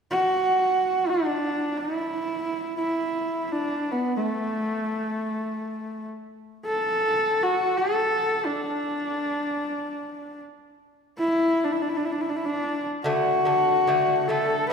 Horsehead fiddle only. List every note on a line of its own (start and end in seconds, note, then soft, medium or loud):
0.11 1.11 F#4 medium
1.09 1.79 D4 medium
1.78 2.76 E4 medium
2.77 3.48 E4 medium
3.48 3.93 D4 medium
3.48 3.53 E4 soft
3.91 4.16 B3 medium
4.16 6.07 A3 medium
6.66 7.44 A4 medium
7.43 7.79 F#4 medium
7.77 8.47 A4 medium
8.45 10.41 D4 medium
11.18 11.66 E4 medium
11.64 11.74 D4 medium
11.73 11.83 E4 medium
11.82 11.90 D4 medium
11.89 11.98 E4 medium
11.97 12.07 D4 medium
12.05 12.13 E4 medium
12.12 12.23 D4 medium
12.21 12.31 E4 medium
12.29 12.38 D4 medium
12.36 12.47 E4 medium
12.45 12.88 D4 medium
13.05 14.29 F#4 medium
14.28 14.69 A4 medium
14.69 14.73 B4 loud